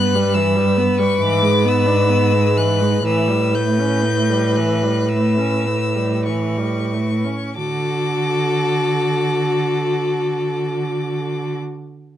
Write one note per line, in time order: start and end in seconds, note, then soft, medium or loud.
0.00 1.17 G2 medium
0.00 0.16 B3 medium
0.00 3.01 B4 loud
0.00 0.36 F#6 loud
0.15 0.36 G3 medium
0.34 0.57 E3 medium
0.34 0.99 E6 loud
0.56 0.79 G3 medium
0.77 1.00 B3 medium
0.99 1.20 G3 medium
0.99 1.23 C#6 loud
1.20 3.02 G#2 medium
1.20 1.43 E3 medium
1.20 1.69 D6 loud
1.42 1.66 G#3 medium
1.65 1.88 B3 medium
1.65 2.59 E6 loud
1.87 2.11 D4 medium
2.10 2.34 B3 medium
2.33 2.57 G#3 medium
2.56 2.82 E3 medium
2.56 3.05 F#6 loud
2.81 3.04 G#3 medium
3.04 7.20 A2 medium
3.04 3.30 E3 medium
3.04 7.21 B4 medium
3.04 3.57 E6 loud
3.28 3.56 G3 medium
3.54 3.81 A3 medium
3.54 4.57 G6 loud
3.79 4.06 C#4 medium
4.05 4.31 A3 medium
4.29 4.58 G3 medium
4.56 4.85 E3 medium
4.56 5.10 F#6 medium
4.83 5.10 G3 medium
5.09 5.40 A3 medium
5.09 6.25 E6 loud
5.38 5.67 C#4 medium
5.66 5.97 A3 medium
5.96 6.28 G3 medium
6.25 6.59 E3 medium
6.25 7.53 C#6 medium
6.57 6.93 G3 medium
6.92 7.26 A3 medium
7.24 7.56 C#4 medium
7.56 11.54 D3 medium
7.56 11.56 F#4 medium
7.56 11.55 A4 medium
7.56 11.55 D6 loud